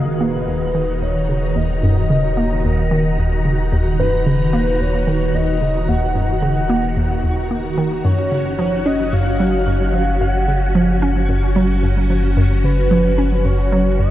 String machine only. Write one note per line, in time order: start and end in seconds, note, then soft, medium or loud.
0.00 1.08 A#2 medium
0.00 8.05 D#3 medium
0.00 9.57 D#4 medium
0.00 14.11 F#4 medium
0.00 1.50 G#4 medium
0.00 1.37 F5 medium
0.00 9.82 A#5 medium
8.04 14.11 C#4 medium